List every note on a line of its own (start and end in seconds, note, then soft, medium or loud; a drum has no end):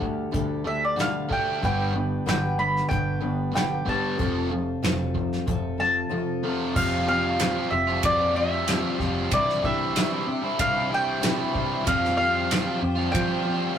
0.00 0.24 D2 medium
0.00 0.33 D3 medium
0.00 0.30 D3 medium
0.00 0.31 G3 medium
0.00 0.30 A3 medium
0.00 0.32 D4 medium
0.00 0.33 G4 loud
0.00 0.33 A4 loud
0.00 kick medium
0.31 1.43 D2 medium
0.31 0.62 D3 medium
0.31 0.65 G3 medium
0.31 0.62 A3 medium
0.31 0.65 D4 medium
0.31 0.64 G4 medium
0.31 0.63 A4 medium
0.31 kick loud
0.31 closed hi-hat medium
0.64 0.94 D3 medium
0.64 0.94 A3 medium
0.64 0.96 D4 soft
0.64 0.96 G4 soft
0.64 0.97 A4 soft
0.64 0.83 E5 medium
0.85 1.00 D5 medium
0.96 1.29 D3 medium
0.96 1.26 D3 medium
0.96 1.30 G3 medium
0.96 1.26 A3 medium
0.96 1.29 D4 medium
0.96 1.29 G4 medium
0.96 1.27 A4 medium
0.96 snare loud
0.96 closed hi-hat medium
1.01 1.33 F5 medium
1.28 1.60 D3 medium
1.28 1.60 A3 medium
1.28 1.61 D4 loud
1.28 1.62 D4 soft
1.28 1.62 G4 soft
1.28 1.61 A4 medium
1.28 kick medium
1.32 1.64 G5 medium
1.61 2.18 G1 loud
1.61 1.92 G2 medium
1.61 1.94 G2 medium
1.61 1.92 D3 medium
1.61 1.95 D3 medium
1.61 1.94 G3 medium
1.61 1.93 G3 loud
1.61 1.93 B3 medium
1.61 1.93 D4 medium
1.61 1.92 B4 medium
1.61 2.28 G5 medium
1.61 kick loud
1.61 closed hi-hat medium
1.93 2.24 G2 medium
1.93 2.24 D3 medium
1.93 2.25 G3 soft
1.93 2.26 B3 soft
1.93 2.26 D4 medium
1.93 2.25 B4 medium
2.26 2.81 G1 medium
2.26 2.90 G2 medium
2.26 2.55 G2 medium
2.26 2.91 D3 medium
2.26 2.56 D3 medium
2.26 2.87 G3 medium
2.26 2.87 B3 medium
2.26 2.88 D4 medium
2.26 2.89 B4 medium
2.26 2.58 G5 medium
2.26 snare loud
2.26 closed hi-hat medium
2.58 2.87 G2 medium
2.58 2.88 D3 medium
2.58 2.88 B5 medium
2.77 snare soft
2.88 4.00 G1 loud
2.88 3.19 G2 medium
2.88 3.19 D3 medium
2.88 3.21 G3 medium
2.88 3.20 B3 medium
2.88 3.20 D4 medium
2.88 3.20 B4 medium
2.88 3.50 G5 medium
2.88 kick loud
2.88 closed hi-hat medium
3.21 3.51 G2 medium
3.21 3.51 D3 medium
3.21 3.53 G3 soft
3.21 3.53 B3 soft
3.21 3.53 D4 soft
3.21 3.53 B4 medium
3.53 3.83 G2 medium
3.53 3.86 G2 medium
3.53 3.83 D3 medium
3.53 3.86 D3 medium
3.53 3.87 G3 medium
3.53 3.86 B3 medium
3.53 3.85 D4 medium
3.53 3.84 B4 medium
3.53 3.88 G5 medium
3.53 snare loud
3.53 closed hi-hat medium
3.86 4.17 G2 medium
3.86 4.17 D3 loud
3.86 4.17 G3 loud
3.86 4.17 G3 soft
3.86 4.18 B3 soft
3.86 4.18 D4 soft
3.86 4.18 B4 medium
3.86 5.79 A5 medium
3.86 kick medium
4.17 4.74 F1 medium
4.17 4.49 F2 medium
4.17 4.49 C3 loud
4.17 4.50 F3 medium
4.17 4.50 F3 loud
4.17 4.50 C4 medium
4.17 4.49 F4 medium
4.17 4.48 A4 medium
4.17 kick loud
4.17 closed hi-hat medium
4.50 4.80 F2 medium
4.50 4.80 C3 medium
4.50 4.82 C4 soft
4.50 4.82 F4 soft
4.50 4.83 A4 medium
4.82 5.38 F1 medium
4.82 5.12 F2 medium
4.82 5.12 C3 medium
4.82 5.45 F3 medium
4.82 5.46 C4 medium
4.82 5.46 F4 medium
4.82 5.47 A4 medium
4.82 snare loud
4.82 closed hi-hat medium
5.15 5.44 F2 medium
5.15 5.44 C3 medium
5.15 kick medium
5.33 snare soft
5.46 6.02 F1 loud
5.46 5.76 F2 medium
5.46 5.76 C3 medium
5.46 5.79 F3 medium
5.46 5.79 C4 medium
5.46 5.77 F4 medium
5.46 5.76 A4 medium
5.46 kick loud
5.46 closed hi-hat medium
5.78 6.08 F2 medium
5.78 6.09 C3 medium
5.78 6.09 C4 soft
5.78 6.09 F4 soft
5.78 6.09 A4 medium
5.78 6.76 A5 loud
6.09 6.40 F2 medium
6.09 6.40 C3 medium
6.09 6.42 F3 medium
6.09 6.43 C4 medium
6.09 6.43 F4 medium
6.09 6.42 A4 medium
6.43 6.73 F2 medium
6.43 6.74 C3 loud
6.43 6.73 F3 medium
6.43 6.75 C4 medium
6.43 6.76 F4 medium
6.43 6.75 A4 medium
6.75 7.57 F1 loud
6.75 7.05 F3 loud
6.75 7.08 F3 medium
6.75 7.07 G3 medium
6.75 7.07 C4 medium
6.75 7.08 C4 loud
6.75 7.07 F4 medium
6.75 7.09 F4 loud
6.75 7.06 G4 medium
6.75 7.06 F5 medium
6.75 kick loud
6.75 crash loud
7.06 7.38 F3 medium
7.06 7.72 F3 medium
7.06 7.40 G3 medium
7.06 7.73 C4 medium
7.06 7.41 C4 medium
7.06 7.71 F4 medium
7.06 7.41 F4 medium
7.06 7.71 G4 medium
7.06 7.70 F5 loud
7.39 7.70 F3 medium
7.39 7.59 G3 loud
7.39 7.57 C4 medium
7.39 7.54 F4 loud
7.39 snare loud
7.39 ride bell medium
7.56 7.72 G3 medium
7.56 7.72 C4 medium
7.56 7.71 F4 medium
7.71 7.99 F1 loud
7.71 8.03 C4 soft
7.71 8.03 F4 medium
7.71 8.03 G4 medium
7.71 8.01 E5 medium
7.71 muted overdriven electric guitar stroke soft
7.87 8.21 G3 medium
7.87 8.20 C4 medium
7.87 8.17 F4 medium
8.03 8.85 F2 loud
8.03 8.35 F3 medium
8.03 8.36 C4 medium
8.03 8.36 F4 medium
8.03 8.34 G4 medium
8.03 8.36 D5 medium
8.03 kick loud
8.03 ride bell medium
8.18 8.36 G3 medium
8.18 8.37 C4 medium
8.18 8.37 F4 medium
8.35 8.66 F3 medium
8.35 8.68 G3 medium
8.35 8.66 C4 soft
8.35 8.69 C4 medium
8.35 8.66 F4 soft
8.35 8.69 F4 medium
8.35 8.67 G4 medium
8.35 8.96 E5 medium
8.67 8.99 F3 medium
8.67 8.97 F3 medium
8.67 8.85 G3 medium
8.67 8.99 C4 medium
8.67 8.84 C4 medium
8.67 8.98 F4 medium
8.67 8.81 F4 loud
8.67 8.97 G4 loud
8.67 snare loud
8.67 ride bell medium
8.82 9.00 G3 medium
8.82 9.00 C4 medium
8.82 9.01 F4 medium
8.98 9.27 F1 medium
8.98 9.29 F3 medium
8.98 9.32 G3 medium
8.98 9.30 C4 soft
8.98 9.33 C4 medium
8.98 9.31 F4 medium
8.98 9.31 G4 medium
8.98 kick medium
8.98 snare soft
9.30 9.59 C2 loud
9.30 9.62 C3 medium
9.30 9.93 C3 medium
9.30 9.62 E3 medium
9.30 9.62 G3 medium
9.30 9.64 G3 loud
9.30 9.65 C4 loud
9.30 9.62 D4 medium
9.30 9.62 E4 medium
9.30 9.65 E4 loud
9.30 9.61 G4 medium
9.30 9.64 D5 medium
9.30 kick loud
9.30 ride bell medium
9.50 snare soft
9.62 9.91 C2 medium
9.62 10.27 C3 medium
9.62 9.94 E3 medium
9.62 10.57 G3 medium
9.62 9.96 G3 medium
9.62 9.97 C4 medium
9.62 10.27 D4 medium
9.62 10.26 E4 medium
9.62 9.97 E4 medium
9.62 10.26 G4 medium
9.62 10.63 E5 medium
9.62 kick medium
9.94 10.43 C3 loud
9.94 10.26 E3 medium
9.94 10.14 G3 loud
9.94 10.12 C4 loud
9.94 10.09 E4 loud
9.94 snare loud
9.94 ride bell medium
10.10 10.27 G3 medium
10.10 10.27 C4 medium
10.10 10.27 E4 medium
10.26 10.57 D4 soft
10.26 10.59 E4 soft
10.26 10.58 G4 medium
10.26 muted overdriven electric guitar stroke soft
10.42 10.78 G3 medium
10.42 10.76 C4 medium
10.42 10.73 E4 medium
10.58 11.41 C2 loud
10.58 10.90 G3 medium
10.58 10.90 D4 medium
10.58 10.88 G4 medium
10.58 10.89 F5 loud
10.58 kick loud
10.58 ride bell medium
10.75 10.91 G3 medium
10.75 10.92 C4 medium
10.75 10.93 E4 medium
10.89 11.22 E3 medium
10.89 11.24 G3 medium
10.89 11.24 C4 medium
10.89 11.20 D4 soft
10.89 11.21 E4 soft
10.89 11.21 G4 medium
10.94 11.24 E4 medium
10.94 11.87 G5 loud
11.21 11.54 C3 medium
11.21 11.70 C3 medium
11.21 11.51 E3 loud
11.21 11.54 G3 medium
11.21 11.40 G3 medium
11.21 11.39 C4 medium
11.21 11.54 D4 medium
11.21 11.54 E4 medium
11.21 11.53 G4 medium
11.21 snare loud
11.21 ride bell medium
11.25 11.36 E4 loud
11.37 11.54 G3 medium
11.37 11.55 C4 medium
11.37 11.55 E4 medium
11.52 11.82 C2 loud
11.52 11.83 E3 medium
11.52 11.85 G3 medium
11.52 11.85 C4 medium
11.52 11.85 D4 soft
11.52 11.85 E4 medium
11.52 11.85 G4 medium
11.52 kick medium
11.83 12.15 F3 loud
11.83 12.17 F3 medium
11.83 12.17 G3 loud
11.83 12.17 C4 medium
11.83 12.18 C4 loud
11.83 12.16 F4 medium
11.83 13.78 F4 medium
11.83 12.16 G4 medium
11.83 ride bell medium
11.87 12.68 F2 loud
11.87 12.18 F4 loud
11.87 13.78 C5 medium
11.87 12.16 F5 loud
11.87 13.78 G5 medium
11.87 kick loud
12.05 snare soft
12.16 12.48 F3 medium
12.16 12.82 F3 medium
12.16 12.50 G3 medium
12.16 12.81 C4 medium
12.16 12.52 C4 medium
12.16 12.80 F4 medium
12.16 12.52 F4 medium
12.16 12.80 G4 medium
12.16 12.78 F5 medium
12.49 12.80 F3 loud
12.49 12.66 G3 loud
12.49 12.66 C4 loud
12.49 12.62 F4 loud
12.49 snare loud
12.49 ride bell medium
12.63 12.82 G3 medium
12.63 12.82 C4 medium
12.63 12.81 F4 medium
12.80 13.09 F2 loud
12.80 13.12 C4 soft
12.80 13.12 F4 medium
12.80 13.13 G4 medium
12.80 muted overdriven electric guitar stroke soft
12.96 13.31 G3 medium
12.96 13.29 C4 medium
12.96 13.26 F4 medium
13.12 13.45 F3 medium
13.12 13.78 F3 loud
13.12 13.45 C4 medium
13.12 13.44 F4 medium
13.12 13.42 G4 medium
13.12 13.73 G5 loud
13.12 kick loud
13.12 ride bell medium
13.28 13.46 C4 medium
13.28 13.46 F4 medium
13.32 13.45 G3 medium
13.44 13.75 F3 medium
13.44 13.77 G3 medium
13.44 13.75 C4 soft
13.44 13.78 C4 medium
13.44 13.76 F4 soft
13.44 13.78 F4 medium
13.44 13.76 G4 medium